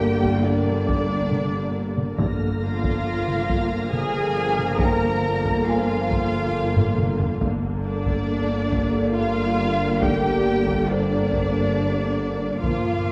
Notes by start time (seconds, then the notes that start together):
Already playing: G1 D3 G3 A#3 G4 A#4 G5 G6
0.23 taiko
0.45 D4 D5
0.67 taiko mid
0.87 D6, taiko
1.32 taiko mid
1.97 taiko mid
2.18 G1 D3 F3 A#3 A#4 F6 A#6, taiko
2.62 F4 F5
2.84 taiko
3.28 taiko mid
3.49 taiko
3.92 G#4 G#5, taiko mid
4.58 taiko mid
4.79 A#4 G5 A#5, taiko
5.45 taiko
5.66 F4 F5 G#5
6.11 taiko
6.76 taiko low-mid
6.98 taiko mid
7.20 taiko low
7.40 G1 D3 G3 A#3 A#4, taiko
7.85 D4 D5
8.06 taiko
8.72 D5, taiko
9.15 F4 F5
10.01 G4 G5, taiko
10.67 taiko
10.89 D4 C5 D5
11.32 taiko
12.60 G1 G2 A#2 F3 A#3 F4 A#4 F5 D6, taiko
12.65 F5